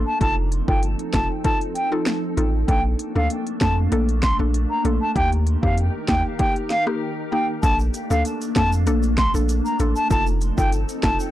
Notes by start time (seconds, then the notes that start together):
Already playing: A3 A#3 D4 A4
0.06 A5
0.21 F1 F3 C4 D#4 F4 A4 A5, kick, closed hi-hat
0.52 closed hi-hat
0.68 G1 D#4 F4 A4 G5, kick
0.83 closed hi-hat
0.99 closed hi-hat
1.13 F1 D#4 F4 A4 A5, finger snap, kick, snare, closed hi-hat
1.44 D#4 F4 A4 A5, kick, closed hi-hat
1.61 closed hi-hat
1.75 G5, closed hi-hat
1.92 D#4 F4 A4
2.06 finger snap, snare, closed hi-hat
2.37 A1 D#4 F4 A4, closed hi-hat
2.68 A#1 A3 A#3 D4 A4 G5, kick, closed hi-hat
2.99 closed hi-hat
3.15 D2 A#3 D4 A4 F5
3.30 closed hi-hat
3.47 closed hi-hat
3.61 F2 A#3 D4 A4 A5, finger snap, kick, snare, closed hi-hat
3.92 A#1 A#3 D4 A4, closed hi-hat
4.09 closed hi-hat
4.23 C6, finger snap, kick, snare, closed hi-hat
4.39 A#1 A#3 D4 A4
4.54 closed hi-hat
4.70 A#5
4.85 A#1 A#3 D4 A4, closed hi-hat
5.01 A5
5.16 D#2 D#3 A#3 D#4 G4 A#4 G5, kick, closed hi-hat
5.32 closed hi-hat
5.47 closed hi-hat
5.63 F2 A#3 D#4 G4 F5, kick
5.78 closed hi-hat
6.08 D#2 A#3 D#4 G4 G5, finger snap, kick, snare, closed hi-hat
6.39 A#3 D#4 G4 G5, kick, closed hi-hat
6.56 closed hi-hat
6.70 F5, snare, closed hi-hat
6.87 A#3 D#4 G4, cross-stick
7.32 A#3 D#4 G4 G5
7.63 A#1 A3 A#3 D4 A4 A5, kick, closed hi-hat, shaker
7.79 shaker
7.94 closed hi-hat, shaker
8.10 D2 A#3 D4 A4 F5, shaker
8.25 closed hi-hat, shaker
8.42 closed hi-hat, shaker
8.56 F2 A#3 D4 A4 A5, finger snap, kick, snare, closed hi-hat
8.72 shaker
8.87 A#1 A#3 D4 A4, closed hi-hat, shaker
9.03 closed hi-hat, shaker
9.18 C6, finger snap, kick, snare, closed hi-hat
9.34 A#1 A#3 D4 A4, shaker
9.49 closed hi-hat, shaker
9.65 A#5, shaker
9.79 A1 A#3 D4 A4, closed hi-hat, shaker
9.96 A5, shaker
10.10 F1 F3 C4 D#4 F4 A4 A5, kick, closed hi-hat, shaker
10.26 shaker
10.41 closed hi-hat, shaker
10.58 G1 D#4 F4 A4 G5, kick, shaker
10.72 closed hi-hat, shaker
10.89 closed hi-hat, shaker
11.03 F1 D#4 F4 A4 A5, finger snap, kick, snare, closed hi-hat
11.20 shaker